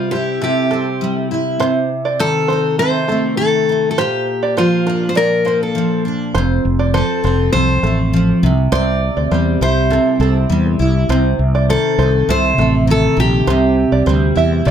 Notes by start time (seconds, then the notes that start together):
Already playing: C3 G3 C4 F4 C5
0.11 E4 G4 C5
0.41 C3 G4 A4
0.71 C4 A4
1.01 G3
1.31 E4
1.60 C3 C5
2.05 D5
2.19 D#3 A4 C5
2.48 D#4 C5
2.79 C3 A4 C5
3.08 A3 A4
3.37 D#3 A4
3.69 D#4
3.91 A4
3.98 A#2 G4 C5
4.43 D5
4.57 F3 F4 C5
4.86 D4 A#4
5.09 C5
5.15 A#2 A#4 D5
5.45 A#3 C5
5.63 A4
5.75 F3
6.05 D4
6.34 F1 F2 C5
6.65 F1
6.79 D5
6.94 F3 A4 C5
7.24 F1 C4 C5
7.53 C2 F2 A4 C5
7.83 A1 A3 A4
8.13 F3
8.43 C2 C3
8.72 C2 C3 C5 D5
9.17 D2 D5
9.31 E2 G3 C5
9.61 C2 E4 C5
9.90 C3 A4
10.20 C2 C4 A4
10.50 E2 G3
10.79 C2 E4
11.09 C2 C3 C5
11.39 C2
11.55 D5
11.69 D#3 A4 C5
11.98 C2 D#4 C5
12.28 C2 C3 A4 C5
12.58 A1 A3 A4
12.87 D#3 A4
13.17 A#1 D#4 G4
13.47 C2 C3 C5
13.92 C2 D5
14.06 D2 G3 C5
14.35 E2 E4 E5
14.65 C2 C3 D5